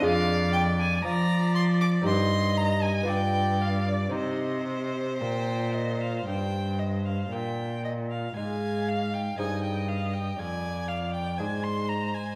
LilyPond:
<<
  \new Staff \with { instrumentName = "Violin" } { \time 4/4 \key c \minor \tempo 4 = 59 f''8 g''16 aes''16 bes''8 c'''16 d'''16 c'''8 bes''16 aes''16 g''8 f''16 d''16 | c''2. r4 | f''4 ees''4 d''4 c''4 | }
  \new Staff \with { instrumentName = "Violin" } { \time 4/4 \key c \minor d''4 d''4 ees''4 d''4 | ees''4 g''8 ees''16 f''16 g''8 ees''16 f''16 g''8 ees''16 f''16 | aes''8 f''16 g''16 aes''16 g''16 f''16 g''16 aes''8 f''16 g''16 aes''16 c'''16 bes''16 aes''16 | }
  \new Staff \with { instrumentName = "Lute" } { \time 4/4 \key c \minor <d' f' aes'>2 <c' ees' g'>4 <b f' g'>4 | <c' ees' g'>1 | aes4 <c' ees' aes'>4 r4 <d' aes'>4 | }
  \new Staff \with { instrumentName = "Lute" } { \clef bass \time 4/4 \key c \minor f,4 f4 g,4 g,4 | c4 bes,4 g,4 bes,4 | aes,4 g,4 f,4 aes,4 | }
  \new Staff \with { instrumentName = "Cello" } { \clef bass \time 4/4 \key c \minor f,4 f4 g,4 g,4 | c4 bes,4 g,4 bes,4 | aes,4 g,4 f,4 aes,4 | }
>>